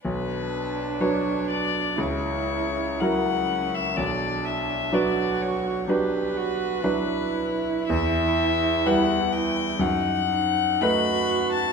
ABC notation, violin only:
X:1
M:4/4
L:1/16
Q:1/4=62
K:Bm
V:1 name="Violin"
B4 c2 d2 c4 f3 e | d2 e2 d2 c2 B8 | e4 f2 g2 f4 b3 a |]